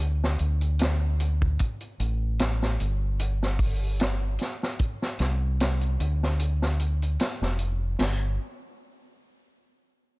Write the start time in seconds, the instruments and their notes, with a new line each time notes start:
Already playing: fingered electric bass D2
0.24 snare
0.39 fingered electric bass D2, closed hi-hat
0.61 closed hi-hat
0.79 snare, closed hi-hat
1.20 closed hi-hat
1.42 kick
1.59 kick, closed hi-hat
1.81 closed hi-hat
2.00 fingered electric bass A1, closed hi-hat
2.39 snare, closed hi-hat
2.62 snare
2.80 fingered electric bass G1, closed hi-hat
3.19 closed hi-hat
3.43 snare
3.59 kick, open hi-hat
4.00 snare, closed hi-hat
4.39 snare, closed hi-hat
4.63 snare
4.79 kick, closed hi-hat
5.02 snare
5.19 fingered electric bass C2, snare, closed hi-hat
5.60 snare, closed hi-hat
5.81 closed hi-hat
6.00 fingered electric bass D2, closed hi-hat
6.23 snare
6.39 closed hi-hat
6.62 snare
6.80 closed hi-hat
7.02 closed hi-hat
7.19 snare, closed hi-hat
7.41 fingered electric bass F1, snare
7.59 closed hi-hat
7.99 fingered electric bass G1, snare, crash